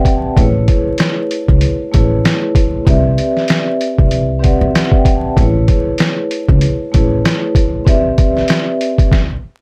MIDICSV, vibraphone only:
0, 0, Header, 1, 2, 480
1, 0, Start_track
1, 0, Tempo, 625000
1, 282, Time_signature, 4, 2, 24, 8
1, 7384, End_track
2, 0, Start_track
2, 0, Title_t, "Vibraphone"
2, 0, Program_c, 0, 11
2, 0, Control_c, 0, 64, 127
2, 0, Note_on_c, 0, 60, 84
2, 0, Note_on_c, 0, 67, 77
2, 0, Note_on_c, 0, 71, 78
2, 0, Note_on_c, 0, 74, 81
2, 0, Note_on_c, 0, 76, 69
2, 0, Note_on_c, 0, 78, 70
2, 0, Note_on_c, 0, 79, 72
2, 79, Note_off_c, 0, 71, 0
2, 82, Note_off_c, 0, 74, 0
2, 118, Note_off_c, 0, 79, 0
2, 124, Note_on_c, 0, 81, 67
2, 272, Note_off_c, 0, 81, 0
2, 277, Note_on_c, 0, 57, 79
2, 285, Note_on_c, 0, 64, 81
2, 290, Note_on_c, 0, 68, 81
2, 293, Control_c, 0, 64, 0
2, 295, Note_off_c, 0, 60, 0
2, 295, Note_off_c, 0, 76, 0
2, 296, Note_off_c, 0, 78, 0
2, 297, Note_on_c, 0, 71, 78
2, 298, Note_off_c, 0, 67, 0
2, 303, Note_on_c, 0, 73, 104
2, 412, Control_c, 0, 64, 127
2, 975, Note_off_c, 0, 57, 0
2, 979, Note_off_c, 0, 64, 0
2, 982, Note_off_c, 0, 68, 0
2, 985, Note_off_c, 0, 71, 0
2, 988, Note_off_c, 0, 73, 0
2, 1472, Note_on_c, 0, 57, 82
2, 1478, Note_on_c, 0, 64, 81
2, 1484, Note_on_c, 0, 68, 71
2, 1491, Note_on_c, 0, 71, 74
2, 1497, Note_on_c, 0, 73, 86
2, 2001, Note_off_c, 0, 57, 0
2, 2004, Note_off_c, 0, 64, 0
2, 2007, Note_off_c, 0, 68, 0
2, 2011, Note_off_c, 0, 71, 0
2, 2014, Note_off_c, 0, 73, 0
2, 2189, Note_on_c, 0, 60, 90
2, 2196, Note_on_c, 0, 67, 85
2, 2203, Note_on_c, 0, 71, 81
2, 2209, Note_on_c, 0, 74, 79
2, 2211, Control_c, 0, 64, 0
2, 2216, Note_on_c, 0, 76, 110
2, 2328, Control_c, 0, 64, 127
2, 2891, Note_off_c, 0, 60, 0
2, 2895, Note_off_c, 0, 67, 0
2, 2898, Note_off_c, 0, 71, 0
2, 2901, Note_off_c, 0, 74, 0
2, 2904, Note_off_c, 0, 76, 0
2, 3375, Note_on_c, 0, 60, 89
2, 3381, Note_on_c, 0, 67, 76
2, 3387, Note_on_c, 0, 71, 80
2, 3394, Note_on_c, 0, 74, 83
2, 3400, Note_on_c, 0, 78, 97
2, 3541, Note_on_c, 0, 76, 71
2, 3637, Note_off_c, 0, 76, 0
2, 3647, Note_off_c, 0, 78, 0
2, 3816, Note_on_c, 0, 79, 71
2, 3912, Note_off_c, 0, 60, 0
2, 3915, Note_off_c, 0, 67, 0
2, 3919, Note_off_c, 0, 71, 0
2, 3922, Note_off_c, 0, 74, 0
2, 3958, Note_off_c, 0, 79, 0
2, 3965, Note_on_c, 0, 81, 70
2, 4112, Note_off_c, 0, 81, 0
2, 4118, Note_on_c, 0, 57, 77
2, 4124, Note_on_c, 0, 64, 81
2, 4131, Note_on_c, 0, 68, 83
2, 4133, Control_c, 0, 64, 0
2, 4137, Note_on_c, 0, 71, 81
2, 4144, Note_on_c, 0, 73, 102
2, 4289, Control_c, 0, 64, 127
2, 4816, Note_off_c, 0, 57, 0
2, 4819, Note_off_c, 0, 64, 0
2, 4822, Note_off_c, 0, 68, 0
2, 4825, Note_off_c, 0, 71, 0
2, 4829, Note_off_c, 0, 73, 0
2, 5312, Note_on_c, 0, 57, 85
2, 5319, Note_on_c, 0, 64, 83
2, 5325, Note_on_c, 0, 68, 72
2, 5331, Note_on_c, 0, 71, 75
2, 5338, Note_on_c, 0, 73, 84
2, 5841, Note_off_c, 0, 57, 0
2, 5844, Note_off_c, 0, 64, 0
2, 5848, Note_off_c, 0, 68, 0
2, 5851, Note_off_c, 0, 71, 0
2, 5854, Note_off_c, 0, 73, 0
2, 6029, Note_on_c, 0, 60, 91
2, 6036, Note_on_c, 0, 67, 84
2, 6041, Note_on_c, 0, 71, 82
2, 6048, Note_on_c, 0, 74, 79
2, 6051, Control_c, 0, 64, 0
2, 6055, Note_on_c, 0, 76, 107
2, 6178, Control_c, 0, 64, 127
2, 6731, Note_off_c, 0, 60, 0
2, 6734, Note_off_c, 0, 67, 0
2, 6737, Note_off_c, 0, 71, 0
2, 6741, Note_off_c, 0, 74, 0
2, 6744, Note_off_c, 0, 76, 0
2, 7011, Control_c, 0, 64, 0
2, 7384, End_track
0, 0, End_of_file